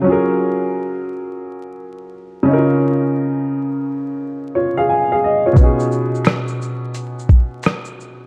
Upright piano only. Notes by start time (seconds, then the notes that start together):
0.02 F#3 C#4
0.07 F4 G#4
0.12 A#4
2.43 C#3 C#4
2.48 D#4 E4
2.53 A#4
2.57 F4
4.55 F4 C#5
4.77 G#4 F5
4.89 G#5
5.12 G#4 F5
5.24 D#5
5.46 F4 C#5
5.52 B2 B3
5.58 C#4 D#4
5.63 G#4